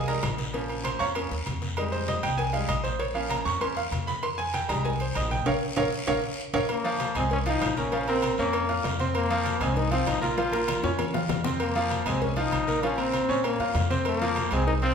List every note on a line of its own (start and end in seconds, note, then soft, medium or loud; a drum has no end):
0.00 0.20 C2 loud
0.08 0.22 G3 medium
0.08 0.22 G#3 soft
0.08 0.22 D#4 medium
0.08 0.23 A#4 medium
0.08 0.23 A#5 loud
0.08 high conga soft
0.08 low agogo medium
0.23 0.95 A#1 loud
0.23 cowbell medium
0.23 high conga medium
0.23 low timbale medium
0.23 low agogo loud
0.23 short guiro medium
0.38 cowbell medium
0.38 high conga medium
0.38 short guiro medium
0.53 1.14 F3 medium
0.53 1.14 A#3 soft
0.53 1.15 C#4 medium
0.53 cowbell loud
0.53 high conga soft
0.53 low agogo medium
0.53 long guiro medium
0.69 high conga soft
0.69 low agogo medium
0.84 1.00 C5 medium
0.84 0.99 C6 medium
0.84 cowbell medium
0.84 high conga loud
0.84 low agogo loud
0.84 short guiro medium
0.99 1.29 F2 loud
0.99 1.09 C#5 medium
0.99 1.09 F5 medium
0.99 1.09 A#5 medium
0.99 1.09 C#6 loud
0.99 high conga soft
0.99 short guiro medium
1.15 1.29 F3 medium
1.15 1.30 A#3 soft
1.15 1.30 C#4 medium
1.15 cowbell loud
1.15 high conga soft
1.15 low agogo loud
1.15 long guiro medium
1.31 1.45 D#2 medium
1.31 cowbell medium
1.46 2.18 F2 medium
1.46 cowbell medium
1.46 high conga medium
1.46 low agogo medium
1.46 short guiro medium
1.62 cowbell medium
1.62 high conga medium
1.62 short guiro medium
1.77 2.21 G3 medium
1.77 2.21 G#3 medium
1.77 2.22 D#4 medium
1.77 cowbell loud
1.77 high conga soft
1.77 low agogo loud
1.77 long guiro medium
1.92 2.07 C5 medium
1.92 cowbell medium
1.92 high conga soft
2.08 2.23 D#5 medium
2.08 cowbell medium
2.08 high conga loud
2.08 low agogo medium
2.08 short guiro medium
2.23 2.66 C2 loud
2.23 2.38 G5 loud
2.23 cowbell medium
2.23 high conga soft
2.23 low conga loud
2.23 low agogo loud
2.23 short guiro medium
2.38 2.53 G#5 loud
2.38 cowbell loud
2.38 high conga soft
2.38 long guiro medium
2.53 2.67 G3 medium
2.53 2.67 G#3 soft
2.53 2.68 D#4 medium
2.53 2.68 F5 medium
2.53 low agogo medium
2.68 3.41 A#1 medium
2.68 2.84 D#5 medium
2.68 cowbell medium
2.68 high conga medium
2.68 low agogo loud
2.68 short guiro medium
2.84 2.99 C5 loud
2.84 cowbell medium
2.84 high conga medium
2.84 short guiro medium
2.99 3.15 C#5 medium
2.99 cowbell loud
2.99 high conga soft
2.99 low agogo medium
2.99 long guiro medium
3.14 3.59 F3 medium
3.14 3.59 A#3 medium
3.14 3.60 C#4 medium
3.14 3.30 F5 loud
3.14 high conga soft
3.14 low agogo medium
3.30 3.45 A#5 loud
3.30 cowbell medium
3.30 high conga medium
3.30 low agogo loud
3.30 short guiro medium
3.45 3.89 F2 loud
3.45 3.61 C#6 loud
3.45 high conga soft
3.45 short guiro medium
3.61 3.75 F3 medium
3.61 3.75 A#3 soft
3.61 3.75 C#4 medium
3.61 3.76 C6 loud
3.61 cowbell loud
3.61 high conga soft
3.61 low agogo loud
3.61 long guiro medium
3.77 3.86 F5 loud
3.77 cowbell medium
3.77 high conga soft
3.91 4.63 F2 loud
3.91 cowbell medium
3.91 high conga medium
3.91 low agogo medium
3.91 short guiro medium
4.07 4.23 B5 loud
4.07 cowbell medium
4.07 high conga medium
4.07 short guiro medium
4.23 4.38 C6 loud
4.23 cowbell loud
4.23 high conga soft
4.23 low agogo loud
4.23 long guiro medium
4.38 4.53 G#5 loud
4.38 cowbell medium
4.38 high conga soft
4.54 4.69 G5 loud
4.54 cowbell medium
4.54 high conga medium
4.54 low agogo medium
4.54 short guiro medium
4.68 5.12 C2 loud
4.68 4.89 G3 medium
4.68 4.90 G#3 medium
4.68 4.90 D#4 medium
4.68 4.84 A#5 loud
4.68 cowbell medium
4.68 high conga soft
4.68 low conga medium
4.68 low agogo loud
4.68 short guiro medium
4.85 5.00 G#5 medium
4.85 cowbell loud
4.85 high conga soft
4.85 long guiro medium
5.00 5.16 C5 medium
5.00 high conga soft
5.00 low agogo medium
5.15 5.44 A#1 loud
5.15 5.31 D#5 medium
5.15 cowbell medium
5.15 high conga medium
5.15 low agogo loud
5.15 short guiro medium
5.31 5.46 G5 loud
5.31 cowbell medium
5.31 high conga medium
5.31 short guiro medium
5.46 5.58 A#1 medium
5.46 5.56 A#4 medium
5.46 5.56 C#5 medium
5.46 5.57 F5 medium
5.46 cowbell loud
5.46 high conga loud
5.46 high timbale loud
5.46 long guiro loud
5.76 5.89 A#1 loud
5.76 5.87 A#4 loud
5.76 5.87 C#5 loud
5.76 5.87 F5 loud
5.76 cowbell loud
5.76 high conga medium
5.76 high timbale loud
5.76 long guiro loud
6.07 6.19 A#1 loud
6.07 6.18 A#4 loud
6.07 6.17 C#5 loud
6.07 6.18 F5 loud
6.07 cowbell loud
6.07 high conga loud
6.07 high timbale loud
6.07 long guiro loud
6.54 6.65 A#1 loud
6.54 6.64 A#4 loud
6.54 6.64 C#5 loud
6.54 6.64 F5 loud
6.54 cowbell loud
6.54 high conga loud
6.54 high timbale loud
6.54 long guiro loud
6.69 7.13 A#3 medium
6.69 cowbell loud
6.69 high conga soft
6.69 low agogo loud
6.69 long guiro medium
6.84 7.10 F3 loud
6.84 7.10 F4 loud
6.84 7.10 F5 medium
6.84 cowbell medium
6.84 high conga soft
6.99 cowbell medium
6.99 high conga loud
6.99 low agogo loud
6.99 short guiro medium
7.15 7.58 C2 medium
7.15 7.41 G#3 medium
7.15 7.24 C4 medium
7.15 7.41 G#4 medium
7.15 7.41 G#5 medium
7.15 cowbell medium
7.15 high conga soft
7.15 low conga loud
7.15 low agogo loud
7.15 short guiro medium
7.30 7.39 C#4 medium
7.30 cowbell loud
7.30 high conga soft
7.30 low conga medium
7.30 long guiro medium
7.46 7.71 F3 medium
7.46 7.76 D#4 loud
7.46 7.71 F4 medium
7.46 7.72 F5 medium
7.46 low agogo medium
7.61 8.33 A#1 medium
7.61 cowbell medium
7.61 high conga medium
7.61 low timbale medium
7.61 low agogo loud
7.61 short guiro medium
7.77 7.90 A#3 medium
7.77 8.06 C#4 medium
7.77 7.90 A#4 medium
7.77 7.90 A#5 medium
7.77 cowbell medium
7.77 high conga medium
7.77 short guiro medium
7.92 8.05 F3 medium
7.92 8.05 F4 medium
7.92 8.05 F5 medium
7.92 cowbell loud
7.92 low agogo medium
7.92 long guiro medium
8.07 8.33 A#3 medium
8.07 8.37 C4 loud
8.07 8.33 A#4 medium
8.07 8.33 A#5 medium
8.07 high conga soft
8.07 low agogo medium
8.22 cowbell medium
8.22 high conga loud
8.22 low agogo loud
8.22 short guiro medium
8.37 8.81 F2 loud
8.37 8.96 A#3 loud
8.37 8.64 C#4 medium
8.37 8.64 C#5 medium
8.37 8.64 C#6 medium
8.37 high conga soft
8.37 short guiro medium
8.53 cowbell loud
8.53 high conga soft
8.53 low agogo loud
8.53 long guiro medium
8.69 8.94 F4 medium
8.69 8.94 F5 medium
8.69 8.94 F6 medium
8.69 cowbell medium
8.69 high conga soft
8.84 9.56 F2 medium
8.84 cowbell medium
8.84 high conga medium
8.84 low timbale medium
8.84 low agogo medium
8.84 short guiro medium
9.00 9.25 C4 medium
9.00 9.25 C5 medium
9.00 9.25 C6 medium
9.00 cowbell medium
9.00 high conga medium
9.00 short guiro medium
9.15 9.63 A#3 loud
9.15 cowbell loud
9.15 high conga soft
9.15 low agogo loud
9.15 long guiro medium
9.30 9.55 F3 loud
9.30 9.56 F4 loud
9.30 9.56 F5 loud
9.30 cowbell medium
9.45 cowbell medium
9.45 high conga medium
9.45 low agogo medium
9.45 short guiro medium
9.61 10.04 C2 medium
9.61 9.87 G#3 medium
9.61 9.78 C4 loud
9.61 9.87 G#4 medium
9.61 9.87 G#5 medium
9.61 cowbell medium
9.61 high conga soft
9.61 low conga loud
9.61 low agogo loud
9.61 short guiro medium
9.76 9.92 D#4 loud
9.76 cowbell loud
9.76 high conga soft
9.76 low conga medium
9.76 long guiro medium
9.91 10.16 F3 medium
9.91 10.09 C4 loud
9.91 10.17 F4 loud
9.91 10.17 F5 medium
9.91 low agogo medium
10.07 10.78 A#1 medium
10.07 10.22 D#4 loud
10.07 cowbell medium
10.07 high conga medium
10.07 low timbale medium
10.07 low agogo loud
10.07 short guiro medium
10.21 10.34 A#3 medium
10.21 11.26 F4 loud
10.21 10.34 A#4 medium
10.21 10.35 A#5 medium
10.21 cowbell medium
10.21 high conga medium
10.21 short guiro medium
10.37 10.50 F3 medium
10.37 10.50 F4 medium
10.37 10.50 F5 medium
10.37 cowbell loud
10.37 high bongo medium
10.37 high conga soft
10.37 low agogo medium
10.37 long guiro medium
10.52 10.78 A#3 medium
10.52 10.78 A#4 medium
10.52 10.78 A#5 medium
10.52 high bongo medium
10.52 high conga soft
10.52 low agogo medium
10.68 cowbell medium
10.68 low bongo medium
10.68 high conga medium
10.68 low agogo loud
10.68 short guiro medium
10.83 11.26 F2 loud
10.83 11.09 C#4 medium
10.83 11.09 C#5 medium
10.83 11.09 C#6 medium
10.83 high bongo loud
10.83 high conga soft
10.83 short guiro medium
10.99 cowbell loud
10.99 low bongo medium
10.99 low agogo loud
10.99 long guiro medium
11.14 11.39 F4 medium
11.14 11.39 F5 medium
11.14 11.40 F6 medium
11.14 cowbell medium
11.14 low bongo loud
11.14 high conga soft
11.29 12.00 F2 loud
11.29 cowbell medium
11.29 low bongo loud
11.29 high conga medium
11.29 low timbale medium
11.29 low agogo medium
11.29 short guiro medium
11.44 11.70 C4 medium
11.44 11.70 C5 medium
11.44 11.70 C6 medium
11.44 cowbell medium
11.44 low bongo medium
11.44 high conga medium
11.44 short guiro medium
11.60 12.10 A#3 loud
11.60 cowbell loud
11.60 high conga soft
11.60 low agogo loud
11.60 long guiro medium
11.75 12.01 F3 loud
11.75 12.01 F4 loud
11.75 12.01 F5 loud
11.75 cowbell medium
11.75 high conga soft
11.91 cowbell medium
11.91 high conga medium
11.91 low agogo loud
11.91 short guiro medium
12.06 12.49 C2 loud
12.06 12.31 G#3 medium
12.06 12.23 C4 medium
12.06 12.32 G#4 medium
12.06 12.32 G#5 medium
12.06 cowbell medium
12.06 high conga soft
12.06 low conga loud
12.06 low agogo loud
12.06 short guiro medium
12.21 12.40 C#4 medium
12.21 cowbell loud
12.21 high conga soft
12.21 low conga medium
12.21 long guiro medium
12.36 12.62 F3 medium
12.36 12.85 D#4 loud
12.36 12.62 F4 medium
12.36 12.62 F5 medium
12.36 low agogo medium
12.52 13.23 A#1 loud
12.52 cowbell medium
12.52 high conga medium
12.52 low agogo loud
12.52 short guiro medium
12.67 12.80 A#3 medium
12.67 12.80 A#4 medium
12.67 12.80 A#5 medium
12.67 cowbell medium
12.67 high conga medium
12.67 short guiro medium
12.83 12.96 F3 medium
12.83 13.01 C#4 loud
12.83 12.96 F4 medium
12.83 12.96 F5 medium
12.83 cowbell loud
12.83 high conga soft
12.83 low agogo medium
12.83 long guiro medium
12.98 13.23 A#3 medium
12.98 13.45 C4 loud
12.98 13.23 A#4 medium
12.98 13.23 A#5 medium
12.98 high conga soft
12.98 low agogo medium
13.13 cowbell medium
13.13 high conga medium
13.13 low agogo loud
13.13 short guiro medium
13.29 13.57 A#2 medium
13.29 13.54 C#4 medium
13.29 13.54 C#5 medium
13.29 13.55 C#6 medium
13.29 high conga soft
13.29 short guiro medium
13.44 13.88 A#3 medium
13.44 cowbell loud
13.44 high conga soft
13.44 low agogo loud
13.44 long guiro medium
13.60 13.74 G2 medium
13.60 13.85 F4 medium
13.60 13.85 F5 medium
13.60 13.85 F6 medium
13.60 cowbell medium
13.60 high conga soft
13.74 14.46 F2 loud
13.74 cowbell medium
13.74 high conga medium
13.74 low timbale medium
13.74 low agogo medium
13.74 short guiro medium
13.90 14.16 C4 medium
13.90 14.16 C5 medium
13.90 14.16 C6 medium
13.90 cowbell medium
13.90 high conga medium
13.90 short guiro medium
14.05 14.49 A#3 loud
14.05 cowbell loud
14.05 high conga soft
14.05 low agogo loud
14.05 long guiro medium
14.21 14.46 F3 loud
14.21 14.47 F4 medium
14.21 14.47 F5 medium
14.21 cowbell medium
14.21 high conga soft
14.36 cowbell medium
14.36 high conga loud
14.36 low agogo loud
14.36 short guiro medium
14.51 14.94 C2 loud
14.51 14.77 G#3 medium
14.51 14.66 C4 loud
14.51 14.77 G#4 medium
14.51 14.78 G#5 medium
14.51 cowbell medium
14.51 high conga soft
14.51 low conga loud
14.51 low agogo loud
14.51 short guiro medium
14.67 14.74 D#4 loud
14.67 cowbell loud
14.67 long guiro medium
14.82 14.94 F3 medium
14.82 14.94 C4 loud
14.82 14.94 F4 medium
14.82 14.94 F5 medium
14.82 low agogo medium